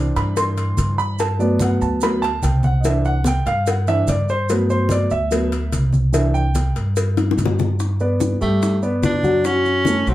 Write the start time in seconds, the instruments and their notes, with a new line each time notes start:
Already playing: grand piano E3 C4 D4
0.16 upright bass G2, grand piano B5, cowbell, high conga, maracas
0.36 grand piano C6, cowbell, high conga, maracas
0.57 cowbell, high conga, maracas
0.77 upright bass G2, cowbell, high conga, maracas
0.98 grand piano B5, high conga, maracas
1.19 grand piano A5, cowbell, high conga, maracas
1.39 grand piano F#3 A3 B3 D5, high conga, maracas
1.60 grand piano F#5, cowbell, high conga, maracas
1.81 upright bass D2, grand piano A5, high conga, maracas
2.01 grand piano F#3 A3 B3 B5, cowbell, high conga, maracas
2.22 grand piano A5, cowbell, high conga, maracas
2.43 upright bass C2, grand piano G5, cowbell, high conga, maracas
2.63 grand piano F#5, high conga, maracas
2.81 grand piano E3 C4 D#5, high conga, maracas
2.85 grand piano D4 E5, cowbell
3.05 grand piano F#5, high conga, maracas
3.24 grand piano G5, cowbell, high conga, maracas
3.46 upright bass G2, grand piano F5, cowbell, high conga, maracas
3.66 grand piano F#5, cowbell, high conga, maracas
3.87 grand piano E3 C4 D4 E5, cowbell, high conga, maracas
4.07 upright bass G2, grand piano D5, cowbell, high conga, maracas
4.28 grand piano C5, high conga, maracas
4.49 grand piano F#3 A3 B3 B4, cowbell, high conga, maracas
4.69 grand piano C5, high conga, maracas
4.89 grand piano D5, cowbell, high conga, maracas
5.10 upright bass D2, grand piano E5, high conga, maracas
5.31 grand piano F#3 A3 B3, cowbell, high conga, maracas
5.52 cowbell, high conga, maracas
5.72 upright bass C2, cowbell, high conga, maracas
5.93 high conga, maracas
6.12 grand piano E3 C4 D4 E5, cowbell, high conga, maracas
6.34 grand piano G5, high conga, maracas
6.55 cowbell, high conga, maracas
6.75 upright bass G2, cowbell, high conga, maracas
6.96 cowbell, high conga, maracas
7.17 cowbell, high bongo, high conga, maracas
7.31 high bongo
7.38 upright bass G2, cowbell, high conga, maracas
7.46 low bongo
7.59 low bongo, high conga, maracas
7.79 high bongo, high conga, maracas
8.00 grand piano B3 B4 D5, high conga, maracas
8.20 high bongo, high conga, maracas
8.41 upright bass G2, grand piano G3 G4 G5, tenor saxophone A3, high conga, maracas
8.62 high bongo, high conga, maracas
8.83 grand piano B3 B4 D5, high conga, maracas
9.03 upright bass F#2, tenor saxophone D4, high bongo, low bongo, high conga, maracas
9.23 grand piano F#3 F#4 F#5, high conga, maracas
9.44 grand piano F#3 F#4 F#5, tenor saxophone C#4, high bongo, high conga, maracas
9.64 high bongo, high conga, maracas
9.85 grand piano A3 A4 C#5, high bongo, high conga, maracas
10.06 upright bass B1, grand piano F#3 F#4 F#5, tenor saxophone C4, high bongo, high conga, maracas